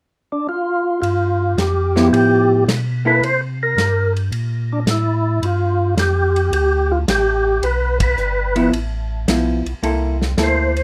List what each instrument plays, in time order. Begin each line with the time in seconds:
0.32 tonewheel organ D4
0.49 tonewheel organ F4
1.02 tonewheel organ G2 F4, ride
1.57 tonewheel organ F2 G4, snare, hi-hat pedal, ride
1.96 hollow-body jazz guitar F3 B3 E4, snare
2.12 tonewheel organ A2 G4, ride
2.67 tonewheel organ B2, snare, hi-hat pedal, ride
3.05 hollow-body jazz guitar A#3 E4 A4, tonewheel organ B4
3.21 tonewheel organ C3 C5, ride
3.63 tonewheel organ A#4
3.77 tonewheel organ G2, snare, hi-hat pedal, ride
4.17 ride
4.32 tonewheel organ A#2, ride
4.73 tonewheel organ D4
4.86 tonewheel organ A2, snare, hi-hat pedal, ride
4.91 tonewheel organ E4
5.42 tonewheel organ G2 F4, ride
5.97 tonewheel organ F2 G4, snare, hi-hat pedal, ride
6.36 ride
6.52 tonewheel organ D2 G4, ride
6.91 tonewheel organ F4
7.08 tonewheel organ A1 G4, snare, hi-hat pedal, ride
7.62 tonewheel organ B1 B4, ride
8.00 tonewheel organ B4, kick, ride
8.18 tonewheel organ G1, hi-hat pedal
8.55 hollow-body jazz guitar F3 B3 E4, ride
8.72 tonewheel organ A1, ride
9.28 tonewheel organ B1, hollow-body jazz guitar F3 B3 E4, snare, hi-hat pedal, ride
9.66 tonewheel organ B1, ride
9.83 tonewheel organ C2, hollow-body jazz guitar A#3 E4 A4, ride
10.22 snare
10.37 tonewheel organ D2, hollow-body jazz guitar A#3 E4 A4, snare, hi-hat pedal, ride
10.43 tonewheel organ C5
10.77 ride